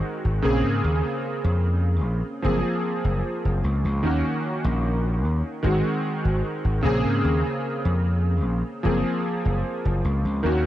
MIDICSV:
0, 0, Header, 1, 3, 480
1, 0, Start_track
1, 0, Tempo, 800000
1, 1466, Time_signature, 4, 2, 24, 8
1, 6397, End_track
2, 0, Start_track
2, 0, Title_t, "Electric grand piano"
2, 0, Program_c, 0, 2
2, 0, Control_c, 0, 64, 127
2, 0, Note_on_c, 0, 51, 72
2, 0, Note_on_c, 0, 56, 68
2, 0, Note_on_c, 0, 60, 71
2, 0, Note_on_c, 0, 66, 83
2, 214, Note_off_c, 0, 51, 0
2, 217, Note_off_c, 0, 56, 0
2, 220, Note_off_c, 0, 60, 0
2, 223, Note_off_c, 0, 66, 0
2, 255, Note_on_c, 0, 49, 90
2, 261, Note_on_c, 0, 58, 81
2, 265, Note_on_c, 0, 60, 83
2, 272, Note_on_c, 0, 68, 100
2, 274, Control_c, 0, 64, 0
2, 390, Control_c, 0, 64, 127
2, 1413, Note_off_c, 0, 49, 0
2, 1416, Note_off_c, 0, 58, 0
2, 1418, Note_off_c, 0, 60, 0
2, 1422, Note_off_c, 0, 68, 0
2, 1454, Note_on_c, 0, 53, 75
2, 1460, Note_on_c, 0, 58, 70
2, 1467, Note_on_c, 0, 60, 70
2, 1472, Note_on_c, 0, 68, 85
2, 1474, Control_c, 0, 64, 0
2, 1567, Control_c, 0, 64, 127
2, 2373, Note_off_c, 0, 53, 0
2, 2376, Note_off_c, 0, 58, 0
2, 2379, Note_off_c, 0, 60, 0
2, 2382, Note_off_c, 0, 68, 0
2, 2416, Note_on_c, 0, 51, 78
2, 2421, Note_on_c, 0, 58, 68
2, 2428, Note_on_c, 0, 61, 66
2, 2433, Control_c, 0, 64, 0
2, 2435, Note_on_c, 0, 66, 85
2, 2532, Control_c, 0, 64, 127
2, 3334, Note_off_c, 0, 51, 0
2, 3336, Note_off_c, 0, 58, 0
2, 3340, Note_off_c, 0, 61, 0
2, 3343, Note_off_c, 0, 66, 0
2, 3375, Note_on_c, 0, 51, 78
2, 3382, Note_on_c, 0, 56, 68
2, 3387, Note_on_c, 0, 60, 65
2, 3394, Control_c, 0, 64, 0
2, 3394, Note_on_c, 0, 66, 81
2, 3505, Control_c, 0, 64, 127
2, 4053, Note_off_c, 0, 51, 0
2, 4057, Note_off_c, 0, 56, 0
2, 4059, Note_off_c, 0, 60, 0
2, 4063, Note_off_c, 0, 66, 0
2, 4095, Note_on_c, 0, 49, 92
2, 4103, Note_on_c, 0, 58, 81
2, 4109, Note_on_c, 0, 60, 81
2, 4114, Control_c, 0, 64, 0
2, 4114, Note_on_c, 0, 68, 104
2, 4229, Control_c, 0, 64, 127
2, 5253, Note_off_c, 0, 49, 0
2, 5257, Note_off_c, 0, 58, 0
2, 5260, Note_off_c, 0, 60, 0
2, 5263, Note_off_c, 0, 68, 0
2, 5298, Note_on_c, 0, 53, 77
2, 5305, Note_on_c, 0, 58, 71
2, 5310, Note_on_c, 0, 60, 66
2, 5313, Control_c, 0, 64, 0
2, 5315, Note_on_c, 0, 68, 82
2, 5408, Control_c, 0, 64, 127
2, 6215, Note_off_c, 0, 53, 0
2, 6218, Note_off_c, 0, 58, 0
2, 6221, Note_off_c, 0, 60, 0
2, 6223, Note_off_c, 0, 68, 0
2, 6257, Note_on_c, 0, 51, 80
2, 6264, Note_on_c, 0, 58, 71
2, 6269, Note_on_c, 0, 61, 68
2, 6273, Control_c, 0, 64, 0
2, 6275, Note_on_c, 0, 66, 83
2, 6364, Control_c, 0, 64, 127
2, 6397, Note_off_c, 0, 51, 0
2, 6397, Note_off_c, 0, 58, 0
2, 6397, Note_off_c, 0, 61, 0
2, 6397, Note_off_c, 0, 66, 0
2, 6397, End_track
3, 0, Start_track
3, 0, Title_t, "Slap bass"
3, 0, Program_c, 1, 36
3, 149, Note_on_c, 1, 32, 80
3, 247, Note_off_c, 1, 32, 0
3, 265, Note_on_c, 1, 34, 92
3, 367, Note_off_c, 1, 34, 0
3, 386, Note_on_c, 1, 44, 83
3, 485, Note_off_c, 1, 44, 0
3, 505, Note_on_c, 1, 39, 82
3, 607, Note_off_c, 1, 39, 0
3, 866, Note_on_c, 1, 41, 104
3, 1225, Note_off_c, 1, 41, 0
3, 1225, Note_on_c, 1, 34, 99
3, 1327, Note_off_c, 1, 34, 0
3, 1466, Note_on_c, 1, 30, 98
3, 1568, Note_off_c, 1, 30, 0
3, 1827, Note_on_c, 1, 30, 83
3, 1926, Note_off_c, 1, 30, 0
3, 2069, Note_on_c, 1, 30, 78
3, 2167, Note_off_c, 1, 30, 0
3, 2184, Note_on_c, 1, 37, 90
3, 2286, Note_off_c, 1, 37, 0
3, 2308, Note_on_c, 1, 37, 85
3, 2406, Note_off_c, 1, 37, 0
3, 2426, Note_on_c, 1, 39, 86
3, 2527, Note_off_c, 1, 39, 0
3, 2786, Note_on_c, 1, 34, 102
3, 3146, Note_off_c, 1, 34, 0
3, 3146, Note_on_c, 1, 39, 98
3, 3248, Note_off_c, 1, 39, 0
3, 3384, Note_on_c, 1, 32, 98
3, 3487, Note_off_c, 1, 32, 0
3, 3749, Note_on_c, 1, 32, 76
3, 3847, Note_off_c, 1, 32, 0
3, 3988, Note_on_c, 1, 32, 81
3, 4086, Note_off_c, 1, 32, 0
3, 4106, Note_on_c, 1, 34, 94
3, 4208, Note_off_c, 1, 34, 0
3, 4229, Note_on_c, 1, 44, 89
3, 4326, Note_off_c, 1, 44, 0
3, 4347, Note_on_c, 1, 39, 87
3, 4448, Note_off_c, 1, 39, 0
3, 4711, Note_on_c, 1, 41, 102
3, 5068, Note_off_c, 1, 41, 0
3, 5068, Note_on_c, 1, 34, 101
3, 5168, Note_off_c, 1, 34, 0
3, 5309, Note_on_c, 1, 30, 99
3, 5409, Note_off_c, 1, 30, 0
3, 5672, Note_on_c, 1, 30, 82
3, 5768, Note_off_c, 1, 30, 0
3, 5911, Note_on_c, 1, 30, 84
3, 6008, Note_off_c, 1, 30, 0
3, 6028, Note_on_c, 1, 37, 95
3, 6129, Note_off_c, 1, 37, 0
3, 6150, Note_on_c, 1, 37, 88
3, 6247, Note_off_c, 1, 37, 0
3, 6269, Note_on_c, 1, 39, 85
3, 6397, Note_off_c, 1, 39, 0
3, 6397, End_track
0, 0, End_of_file